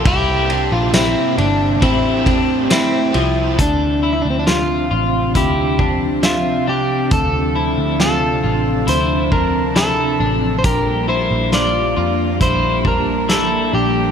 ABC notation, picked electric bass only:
X:1
M:4/4
L:1/16
Q:1/4=68
K:Dm
V:1 name="Picked electric bass" clef=bass
C,,3 B,,,2 z G,,,2 A,,,4 z2 C,,2 | D,,3 D,,3 A,,,2 D,,6 C,,2 | D,,3 D,,3 A,,,2 D,,6 A,,,2 | B,,,3 B,,,3 F,,2 B,,,6 B,,,2 |]